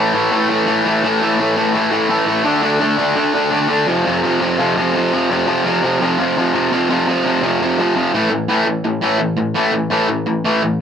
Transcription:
0.00 0.13 A2 medium
0.00 0.14 E3 medium
0.00 0.14 A3 loud
0.13 0.31 A2 loud
0.13 0.31 E3 loud
0.13 0.33 A3 loud
0.32 0.48 A2 medium
0.32 0.48 E3 loud
0.32 0.50 A3 medium
0.49 0.66 A2 medium
0.49 0.66 E3 medium
0.49 0.67 A3 medium
0.67 0.84 A2 loud
0.67 0.85 E3 loud
0.67 0.86 A3 loud
0.85 1.03 A2 medium
0.85 1.03 E3 medium
0.85 1.05 A3 loud
1.04 1.20 A2 loud
1.04 1.20 E3 loud
1.04 1.22 A3 loud
1.21 1.38 A2 medium
1.21 1.39 E3 loud
1.21 1.40 A3 loud
1.39 1.55 A2 medium
1.39 1.56 E3 loud
1.39 1.57 A3 loud
1.56 1.73 A2 loud
1.56 1.74 E3 loud
1.56 1.75 A3 loud
1.74 1.90 A2 loud
1.74 1.91 E3 medium
1.74 1.92 A3 medium
1.91 2.08 A2 medium
1.91 2.09 E3 medium
1.91 2.10 A3 loud
2.09 2.26 A2 medium
2.09 2.27 E3 loud
2.09 2.28 A3 loud
2.27 2.44 A2 medium
2.27 2.44 E3 medium
2.27 2.45 A3 medium
2.44 2.61 D3 loud
2.44 2.63 A3 loud
2.44 2.62 D4 loud
2.63 2.79 D3 medium
2.63 2.80 A3 loud
2.63 2.80 D4 loud
2.80 2.96 D3 medium
2.80 2.98 A3 loud
2.80 2.98 D4 medium
2.98 3.15 D3 medium
2.98 3.16 A3 loud
2.98 3.16 D4 medium
3.16 3.33 D3 medium
3.16 3.34 A3 medium
3.16 3.34 D4 medium
3.34 3.50 D3 loud
3.34 3.52 A3 loud
3.34 3.52 D4 loud
3.51 3.67 D3 loud
3.51 3.69 A3 loud
3.51 3.69 D4 loud
3.69 3.86 D3 medium
3.69 3.88 A3 medium
3.69 3.86 D4 medium
3.87 4.05 F2 loud
3.87 4.05 C3 loud
3.87 4.06 F3 loud
4.06 4.22 F2 loud
4.06 4.23 C3 loud
4.06 4.24 F3 loud
4.24 4.39 F2 medium
4.24 4.40 C3 medium
4.24 4.40 F3 medium
4.40 4.57 F2 loud
4.40 4.58 C3 medium
4.40 4.58 F3 loud
4.58 4.76 F2 medium
4.58 4.76 C3 medium
4.58 4.77 F3 loud
4.77 4.93 F2 medium
4.77 4.94 C3 medium
4.77 4.94 F3 medium
4.94 5.11 F2 medium
4.94 5.12 C3 loud
4.94 5.12 F3 loud
5.12 5.29 F2 medium
5.12 5.29 C3 medium
5.12 5.29 F3 medium
5.30 5.47 F2 loud
5.30 5.46 C3 loud
5.30 5.47 F3 loud
5.47 5.65 F2 medium
5.47 5.64 C3 loud
5.47 5.66 F3 medium
5.65 5.83 F2 medium
5.65 5.83 C3 loud
5.65 5.84 F3 loud
5.83 5.99 F2 medium
5.83 6.00 C3 medium
5.83 6.01 F3 medium
6.00 6.18 F2 medium
6.00 6.18 C3 medium
6.00 6.19 F3 loud
6.19 6.36 F2 medium
6.19 6.37 C3 medium
6.19 6.37 F3 loud
6.37 6.53 F2 medium
6.37 6.53 C3 medium
6.37 6.54 F3 loud
6.54 6.70 F2 medium
6.54 6.71 C3 medium
6.54 6.72 F3 medium
6.71 6.88 F2 loud
6.71 6.89 C3 loud
6.71 6.90 F3 loud
6.90 7.06 F2 medium
6.90 7.07 C3 medium
6.90 7.08 F3 loud
7.08 7.24 F2 medium
7.08 7.24 C3 medium
7.08 7.25 F3 loud
7.25 7.41 F2 medium
7.25 7.42 C3 medium
7.25 7.42 F3 medium
7.42 7.60 F2 medium
7.42 7.61 C3 loud
7.42 7.61 F3 loud
7.61 7.77 F2 medium
7.61 7.78 C3 medium
7.61 7.78 F3 medium
7.79 7.94 F2 loud
7.79 7.95 C3 medium
7.79 7.95 F3 loud
7.95 8.12 F2 medium
7.95 8.13 C3 medium
7.95 8.13 F3 medium
8.14 8.29 A2 medium
8.14 8.30 E3 loud
8.14 8.31 A3 loud
8.30 8.47 A2 medium
8.30 8.47 E3 medium
8.49 8.65 A2 medium
8.49 8.66 E3 medium
8.49 8.66 A3 medium
8.66 8.83 A2 medium
8.66 8.83 E3 medium
8.85 9.01 A2 medium
8.85 9.01 E3 medium
9.02 9.18 A2 medium
9.02 9.19 E3 loud
9.02 9.20 A3 medium
9.19 9.36 A2 medium
9.19 9.36 E3 medium
9.38 9.54 A2 medium
9.38 9.54 E3 medium
9.55 9.72 A2 medium
9.55 9.72 E3 loud
9.55 9.73 A3 loud
9.73 9.89 A2 medium
9.73 9.89 E3 medium
9.90 10.07 A2 medium
9.90 10.08 E3 medium
9.90 10.08 A3 medium
10.09 10.25 A2 medium
10.09 10.25 E3 medium
10.26 10.43 A2 medium
10.26 10.43 E3 medium
10.45 10.62 A2 medium
10.45 10.62 E3 medium
10.45 10.62 A3 medium
10.63 10.79 A2 medium
10.63 10.79 E3 medium

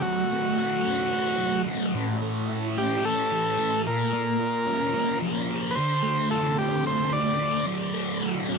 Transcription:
0.00 1.37 F#3 medium
0.00 0.30 A3 medium
0.00 1.62 F#4 medium
0.31 1.12 A3 medium
0.58 1.94 F#4 medium
0.85 2.77 C#4 medium
1.13 1.66 A3 medium
1.38 1.93 F#3 medium
1.67 1.94 A3 medium
1.94 3.30 A2 medium
2.21 3.02 A3 medium
2.49 3.85 E4 medium
2.77 3.86 C#4 medium
2.77 3.05 G4 medium
3.04 3.57 A3 medium
3.04 3.82 A4 loud
3.31 3.85 E3 medium
3.58 3.85 A3 medium
3.86 5.22 A#2 medium
3.86 5.19 A#4 medium
4.13 4.93 A#3 medium
4.40 5.76 F4 medium
4.67 5.76 C#4 medium
4.94 5.49 A#3 medium
5.21 5.76 F3 medium
5.50 5.77 A#3 medium
5.71 5.75 B4 medium
5.75 7.09 D3 medium
5.75 6.29 C5 medium
6.03 6.83 A3 medium
6.31 7.67 F4 medium
6.31 6.57 A4 medium
6.56 7.67 C4 medium
6.56 6.85 G4 medium
6.84 7.38 A3 medium
6.84 7.13 C5 medium
7.10 7.66 D3 medium
7.10 7.66 D5 medium
7.38 7.92 A3 medium
7.66 8.58 F#3 medium
7.93 8.58 A3 medium
8.22 8.58 F#4 medium
8.48 8.58 C#4 medium

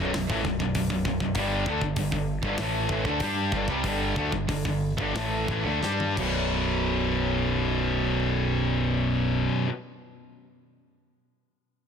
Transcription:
0.00 0.14 B0 loud
0.00 0.14 B1 medium
0.00 0.14 F#2 medium
0.00 kick loud
0.14 0.29 B0 medium
0.14 0.29 B1 medium
0.14 0.30 F#2 medium
0.14 snare loud
0.14 open hi-hat medium
0.29 0.44 A1 medium
0.29 0.44 A2 medium
0.29 0.45 E3 medium
0.29 kick loud
0.45 0.59 B0 medium
0.45 0.60 B1 medium
0.45 0.60 F#2 medium
0.45 kick medium
0.60 0.74 B0 medium
0.60 0.74 B1 medium
0.60 0.75 F#2 medium
0.60 kick medium
0.75 0.89 B0 medium
0.75 0.90 B1 medium
0.75 0.91 F#2 medium
0.75 kick medium
0.75 open hi-hat medium
0.90 1.04 B0 medium
0.90 1.05 B1 medium
0.90 1.05 F#2 medium
0.90 kick medium
1.05 1.20 B0 medium
1.05 1.20 B1 medium
1.05 1.21 F#2 medium
1.05 kick medium
1.20 1.35 B0 medium
1.20 1.35 B1 medium
1.20 1.35 F#2 medium
1.20 kick medium
1.35 1.64 G1 medium
1.35 1.65 G2 medium
1.35 1.65 D3 medium
1.35 1.66 G3 medium
1.35 kick medium
1.35 open hi-hat soft
1.66 1.81 D2 medium
1.66 1.81 D3 medium
1.66 1.82 A3 medium
1.66 kick loud
1.81 1.95 G1 medium
1.81 1.97 G2 medium
1.81 1.97 D3 medium
1.81 kick medium
1.96 2.11 G1 medium
1.96 2.12 G2 medium
1.96 2.13 D3 medium
1.96 kick medium
1.96 open hi-hat medium
2.12 2.41 G1 medium
2.12 2.37 G2 medium
2.12 2.38 D3 medium
2.12 kick medium
2.43 2.57 G1 loud
2.43 2.58 G2 medium
2.43 2.58 D3 medium
2.43 kick loud
2.58 2.87 A1 medium
2.58 2.89 A2 medium
2.58 2.89 E3 loud
2.58 2.89 A3 loud
2.58 snare loud
2.58 open hi-hat medium
2.89 3.04 A1 medium
2.89 3.04 A2 medium
2.89 3.04 E3 medium
2.89 kick medium
3.05 3.19 D2 medium
3.05 3.20 D3 medium
3.05 3.20 A3 loud
3.05 kick medium
3.20 3.50 G2 medium
3.20 3.52 G3 medium
3.20 3.52 D4 medium
3.20 3.52 G4 medium
3.20 kick medium
3.20 open hi-hat soft
3.52 3.67 G1 medium
3.52 3.68 G2 medium
3.52 3.68 D3 medium
3.52 kick medium
3.68 3.83 C2 medium
3.68 3.83 C3 medium
3.68 3.83 G3 loud
3.68 kick medium
3.84 4.14 G1 medium
3.84 4.15 G2 medium
3.84 4.15 D3 medium
3.84 4.16 G3 medium
3.84 kick medium
3.84 open hi-hat soft
4.16 4.31 D2 medium
4.16 4.31 D3 medium
4.16 4.32 A3 loud
4.16 kick medium
4.32 4.47 G1 medium
4.32 4.47 G2 medium
4.32 4.47 D3 medium
4.32 kick medium
4.48 4.64 G1 medium
4.48 4.64 G2 medium
4.48 4.65 D3 medium
4.48 kick medium
4.48 open hi-hat medium
4.65 4.95 G1 medium
4.65 4.91 G2 medium
4.65 4.91 D3 medium
4.65 kick medium
4.97 5.13 G1 medium
4.97 5.13 G2 medium
4.97 5.14 D3 medium
4.97 kick loud
5.14 5.46 A1 medium
5.14 5.47 A2 loud
5.14 5.47 E3 medium
5.14 5.48 A3 loud
5.14 snare loud
5.14 open hi-hat soft
5.48 5.64 A1 loud
5.48 5.64 A2 medium
5.48 5.65 E3 medium
5.48 kick medium
5.65 5.81 D2 medium
5.65 5.81 D3 medium
5.65 5.81 A3 medium
5.82 6.15 G2 medium
5.82 6.16 G3 medium
5.82 6.16 D4 loud
5.82 6.16 G4 loud
5.82 snare medium
6.00 high tom medium
6.15 9.47 B0 medium
6.15 9.65 B1 medium
6.15 9.67 F#2 medium
6.15 9.69 B2 medium
6.15 kick medium
6.15 crash medium

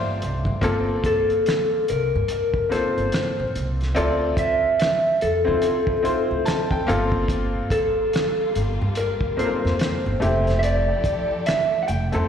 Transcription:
0.00 0.60 A#2 medium
0.00 0.60 G3 medium
0.00 0.17 A3 medium
0.00 0.17 A#3 medium
0.00 0.17 C4 medium
0.00 0.17 F4 medium
0.00 0.60 F4 medium
0.00 0.59 C5 medium
0.00 0.63 D5 medium
0.00 0.64 E5 medium
0.00 0.64 F5 medium
0.22 0.43 C2 medium
0.22 closed hi-hat medium
0.45 0.60 G2 loud
0.45 kick medium
0.61 0.97 G1 medium
0.61 1.94 A#3 medium
0.61 1.95 C4 medium
0.61 1.95 F4 medium
0.61 1.96 A4 medium
0.61 kick medium
0.61 closed hi-hat medium
1.04 1.84 A4 medium
1.04 kick medium
1.04 closed hi-hat medium
1.30 closed hi-hat soft
1.46 finger snap medium
1.46 snare medium
1.46 closed hi-hat medium
1.88 2.10 C2 medium
1.88 2.72 A#4 medium
1.88 closed hi-hat medium
2.15 2.28 G2 medium
2.28 closed hi-hat medium
2.54 kick medium
2.69 3.72 A#3 medium
2.69 3.72 C4 medium
2.69 3.72 F4 medium
2.69 3.73 A4 medium
2.69 3.50 C5 loud
2.69 closed hi-hat medium
2.73 muted upright bass stroke soft
2.73 snare soft
2.98 3.10 G1 medium
2.98 closed hi-hat soft
3.12 finger snap medium
3.12 snare loud
3.12 closed hi-hat medium
3.39 3.52 A#1 medium
3.55 3.90 C2 medium
3.55 closed hi-hat medium
3.81 snare soft
3.81 closed hi-hat soft
3.95 4.31 D2 loud
3.95 5.12 C4 medium
3.95 5.12 E4 medium
3.95 5.13 F4 medium
3.95 5.13 A4 loud
3.95 4.34 D5 loud
3.95 closed hi-hat medium
4.37 5.17 E5 loud
4.37 kick medium
4.37 closed hi-hat medium
4.80 finger snap medium
4.80 snare loud
4.80 closed hi-hat medium
5.21 5.43 F2 medium
5.21 6.84 A4 medium
5.21 closed hi-hat medium
5.45 5.61 D3 medium
5.45 5.93 C4 medium
5.45 5.93 E4 medium
5.45 5.93 F4 medium
5.45 5.94 C5 medium
5.62 closed hi-hat medium
5.87 kick medium
6.03 6.73 C4 medium
6.03 6.73 E4 medium
6.03 6.73 F4 medium
6.03 6.74 C5 medium
6.03 muted upright bass stroke soft
6.03 closed hi-hat medium
6.31 6.44 D2 medium
6.45 6.69 A5 medium
6.45 finger snap medium
6.45 snare loud
6.45 closed hi-hat medium
6.71 6.85 F2 medium
6.71 6.86 G5 medium
6.71 kick medium
6.87 7.58 G1 loud
6.87 8.22 A#3 medium
6.87 8.22 C4 medium
6.87 8.23 F4 medium
6.87 8.23 A4 loud
6.87 7.26 F5 medium
6.87 closed hi-hat medium
7.12 kick medium
7.28 10.17 G3 medium
7.28 10.17 A#3 medium
7.28 10.17 F4 medium
7.28 kick loud
7.28 closed hi-hat medium
7.70 8.50 A4 loud
7.70 kick medium
7.70 closed hi-hat medium
8.13 finger snap medium
8.13 snare loud
8.13 closed hi-hat medium
8.55 8.76 G1 medium
8.55 closed hi-hat medium
8.81 8.94 G2 medium
8.95 9.39 A#4 medium
8.95 closed hi-hat medium
9.21 kick medium
9.37 10.20 A#3 medium
9.37 10.19 C4 medium
9.37 10.21 F4 medium
9.37 9.46 A4 medium
9.37 10.61 C5 medium
9.37 muted upright bass stroke soft
9.37 closed hi-hat medium
9.45 10.25 A#4 medium
9.65 9.77 F2 medium
9.65 snare soft
9.79 finger snap medium
9.79 snare loud
9.79 closed hi-hat medium
10.06 10.19 G1 medium
10.20 10.91 F1 medium
10.20 12.27 F3 medium
10.20 11.55 A3 medium
10.20 11.56 C4 medium
10.20 12.27 E4 medium
10.20 11.56 E4 medium
10.20 12.27 G4 medium
10.20 11.56 G4 medium
10.20 12.27 A4 medium
10.20 closed hi-hat medium
10.47 snare soft
10.47 closed hi-hat soft
10.59 10.63 E5 medium
10.59 closed hi-hat medium
10.64 11.46 D5 medium
11.04 kick medium
11.04 closed hi-hat medium
11.46 11.82 E5 medium
11.46 finger snap medium
11.46 snare loud
11.46 closed hi-hat medium
11.83 11.87 F#5 medium
11.88 12.09 F1 medium
11.88 12.28 G5 medium
11.88 closed hi-hat medium
12.12 12.27 F2 medium
12.12 12.28 A3 medium
12.12 12.28 C4 medium
12.12 12.28 E4 medium
12.12 12.28 A4 medium
12.12 closed hi-hat soft

